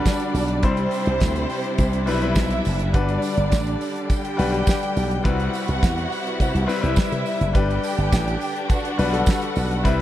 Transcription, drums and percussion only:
0.05 kick loud
0.05 snare loud
0.05 closed hi-hat medium
0.05 tambourine loud
0.20 closed hi-hat soft
0.35 open hi-hat medium
0.35 tambourine medium
0.48 closed hi-hat soft
0.63 kick loud
0.63 closed hi-hat medium
0.77 closed hi-hat soft
0.91 open hi-hat medium
0.91 tambourine medium
1.06 closed hi-hat soft
1.20 kick loud
1.20 snare loud
1.20 closed hi-hat medium
1.20 tambourine medium
1.36 closed hi-hat medium
1.50 open hi-hat medium
1.50 tambourine soft
1.64 closed hi-hat soft
1.78 kick loud
1.78 closed hi-hat medium
1.78 tambourine medium
1.93 closed hi-hat soft
2.07 open hi-hat medium
2.07 tambourine soft
2.22 closed hi-hat soft
2.35 kick loud
2.35 snare loud
2.35 closed hi-hat medium
2.35 tambourine loud
2.50 closed hi-hat medium
2.65 open hi-hat medium
2.65 tambourine medium
2.79 closed hi-hat medium
2.94 kick loud
2.94 closed hi-hat medium
3.09 closed hi-hat soft
3.22 open hi-hat medium
3.22 tambourine medium
3.37 closed hi-hat soft
3.52 kick loud
3.52 snare loud
3.52 closed hi-hat medium
3.52 tambourine loud
3.67 closed hi-hat medium
3.81 open hi-hat medium
3.81 tambourine soft
3.96 closed hi-hat soft
4.10 kick loud
4.10 closed hi-hat medium
4.10 tambourine medium
4.25 closed hi-hat medium
4.39 open hi-hat medium
4.39 tambourine soft
4.54 closed hi-hat soft
4.67 kick loud
4.67 snare loud
4.67 closed hi-hat medium
4.67 tambourine loud
4.83 closed hi-hat medium
4.97 open hi-hat medium
4.97 tambourine medium
5.11 closed hi-hat medium
5.25 kick loud
5.25 closed hi-hat medium
5.40 closed hi-hat soft
5.54 open hi-hat medium
5.54 tambourine medium
5.68 closed hi-hat soft
5.83 kick loud
5.83 snare loud
5.83 closed hi-hat medium
5.83 tambourine loud
5.98 closed hi-hat soft
6.12 open hi-hat medium
6.12 tambourine soft
6.27 closed hi-hat soft
6.40 kick loud
6.40 closed hi-hat medium
6.40 tambourine medium
6.55 closed hi-hat medium
6.69 open hi-hat medium
6.69 tambourine soft
6.84 closed hi-hat soft
6.96 kick loud
6.96 snare loud
6.96 closed hi-hat medium
6.96 tambourine loud
7.12 closed hi-hat medium
7.26 open hi-hat medium
7.26 tambourine medium
7.41 closed hi-hat medium
7.55 kick loud
7.55 closed hi-hat medium
7.55 tambourine soft
7.71 closed hi-hat soft
7.83 open hi-hat medium
7.83 tambourine medium
7.98 closed hi-hat soft
8.12 kick loud
8.12 snare loud
8.12 closed hi-hat medium
8.12 tambourine loud
8.28 closed hi-hat soft
8.41 open hi-hat medium
8.41 tambourine soft
8.56 closed hi-hat soft
8.70 kick loud
8.70 closed hi-hat medium
8.70 tambourine medium
8.85 closed hi-hat medium
8.99 open hi-hat medium
8.99 tambourine soft
9.14 closed hi-hat soft
9.26 kick loud
9.26 snare loud
9.26 closed hi-hat medium
9.26 tambourine loud
9.42 closed hi-hat soft
9.56 open hi-hat medium
9.56 tambourine medium
9.71 closed hi-hat soft
9.85 kick loud
9.85 closed hi-hat medium
9.85 tambourine soft

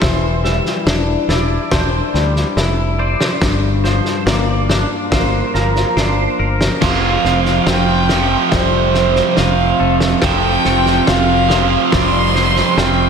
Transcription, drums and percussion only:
0.02 kick medium
0.02 snare medium
0.44 snare soft
0.66 snare soft
0.87 snare medium
1.29 snare medium
1.71 kick medium
1.71 snare medium
2.14 snare soft
2.36 snare soft
2.57 snare medium
3.21 snare medium
3.42 kick medium
3.42 snare medium
3.84 snare soft
4.05 snare soft
4.27 snare medium
4.70 snare medium
5.12 kick loud
5.12 snare medium
5.54 snare soft
5.76 snare soft
5.97 snare medium
6.61 snare medium
6.82 kick medium
6.82 snare medium
6.82 crash medium
7.25 snare soft
7.45 snare soft
7.67 snare medium
8.09 snare medium
8.52 kick medium
8.52 snare medium
8.94 snare soft
9.16 snare soft
9.37 snare medium
10.00 snare medium
10.22 kick medium
10.22 snare medium
10.65 snare soft
10.86 snare soft
11.07 snare medium
11.50 snare medium
11.92 kick medium
11.92 snare medium
12.35 snare soft
12.56 snare soft
12.78 snare medium

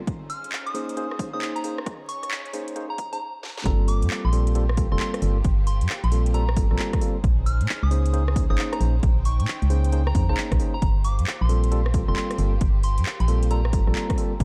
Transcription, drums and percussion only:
0.07 kick loud
0.07 closed hi-hat medium
0.30 open hi-hat loud
0.44 closed hi-hat medium
0.52 clap loud
0.67 closed hi-hat soft
0.75 open hi-hat loud
0.89 closed hi-hat medium
0.97 closed hi-hat medium
1.11 cross-stick medium
1.19 kick loud
1.19 open hi-hat loud
1.42 clap loud
1.56 closed hi-hat soft
1.64 open hi-hat loud
1.78 cross-stick medium
1.86 kick loud
1.86 cross-stick medium
1.86 closed hi-hat medium
2.09 open hi-hat loud
2.23 cross-stick soft
2.23 closed hi-hat medium
2.31 clap loud
2.45 closed hi-hat soft
2.53 open hi-hat loud
2.68 closed hi-hat medium
2.76 closed hi-hat medium
2.98 kick loud
2.98 open hi-hat loud
3.13 open hi-hat medium
3.43 snare medium
3.57 snare medium
3.66 kick loud
3.66 closed hi-hat medium
3.88 open hi-hat loud
4.02 closed hi-hat medium
4.10 clap loud
4.33 open hi-hat loud
4.47 closed hi-hat medium
4.55 closed hi-hat medium
4.69 cross-stick medium
4.77 kick loud
4.77 open hi-hat loud
4.92 cross-stick soft
5.00 clap loud
5.14 cross-stick medium
5.14 closed hi-hat medium
5.22 open hi-hat loud
5.44 kick loud
5.44 closed hi-hat medium
5.67 open hi-hat loud
5.81 closed hi-hat medium
5.89 clap loud
6.04 closed hi-hat soft
6.12 open hi-hat loud
6.26 closed hi-hat medium
6.34 closed hi-hat medium
6.49 cross-stick medium
6.57 kick loud
6.57 open hi-hat loud
6.71 cross-stick soft
6.79 clap loud
6.93 kick loud
6.93 cross-stick medium
6.93 closed hi-hat soft
7.01 open hi-hat medium
7.24 kick loud
7.24 closed hi-hat medium
7.46 open hi-hat loud
7.61 closed hi-hat medium
7.69 clap loud
7.91 open hi-hat loud
8.06 closed hi-hat medium
8.14 closed hi-hat medium
8.28 cross-stick medium
8.36 kick loud
8.36 open hi-hat loud
8.50 cross-stick soft
8.58 clap loud
8.73 cross-stick medium
8.73 closed hi-hat medium
8.81 open hi-hat medium
9.03 kick loud
9.03 closed hi-hat medium
9.25 open hi-hat loud
9.40 closed hi-hat medium
9.48 clap loud
9.62 closed hi-hat soft
9.70 open hi-hat medium
9.84 closed hi-hat medium
9.92 closed hi-hat medium
10.07 cross-stick medium
10.15 kick loud
10.15 open hi-hat loud
10.29 cross-stick soft
10.37 clap loud
10.52 kick loud
10.52 cross-stick medium
10.52 closed hi-hat medium
10.60 open hi-hat medium
10.82 kick loud
10.82 closed hi-hat medium
11.04 open hi-hat loud
11.19 closed hi-hat medium
11.27 clap loud
11.49 open hi-hat medium
11.64 closed hi-hat medium
11.72 closed hi-hat medium
11.86 cross-stick medium
11.94 kick loud
11.94 open hi-hat loud
12.08 cross-stick soft
12.16 clap loud
12.31 cross-stick medium
12.31 closed hi-hat medium
12.38 open hi-hat medium
12.61 kick loud
12.61 closed hi-hat medium
12.83 open hi-hat loud
12.98 closed hi-hat medium
13.06 clap loud
13.20 closed hi-hat soft
13.28 open hi-hat loud
13.43 closed hi-hat medium
13.51 closed hi-hat medium
13.65 cross-stick medium
13.73 kick loud
13.73 open hi-hat loud
13.87 cross-stick soft
13.95 clap loud
14.10 kick loud
14.10 cross-stick medium
14.10 closed hi-hat medium
14.18 open hi-hat medium
14.40 kick loud
14.40 closed hi-hat medium

